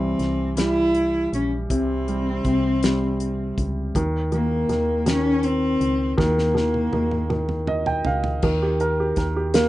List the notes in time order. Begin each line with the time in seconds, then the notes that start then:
Already playing: C2 E3 G3 C4
0.19 C2, snare, closed hi-hat
0.57 G3 E4, snare, closed hi-hat
0.95 closed hi-hat
1.33 A#1 C#4, closed hi-hat
1.70 C2 C3 C4, kick, closed hi-hat
2.08 G3, closed hi-hat
2.45 C2 C3, kick, closed hi-hat
2.83 G3, snare, closed hi-hat
3.20 closed hi-hat
3.58 C#2, kick, closed hi-hat
3.95 D#2 D#3, kick, closed hi-hat
4.32 D#3 A#3, closed hi-hat
4.69 D#2 D#3, snare, closed hi-hat
5.06 D#3 C#4, snare, closed hi-hat
5.43 C4, closed hi-hat
5.81 C#2, closed hi-hat
6.18 D#2 D#3 A#3, kick, snare
6.38 snare
6.55 D#3, snare
6.74 high tom
6.93 D#2 D#3, high tom
7.11 mid tom
7.30 D#3, mid tom
7.49 mid tom
7.67 D#5, mid tom
7.86 G5, floor tom
8.05 C#2 F5, floor tom
8.24 floor tom
8.42 D#2 D#3, kick, crash
8.62 G4
8.80 A#4, closed hi-hat
9.00 G4
9.16 D#2 A#4, kick, snare, closed hi-hat
9.36 G4
9.54 A#3, snare, closed hi-hat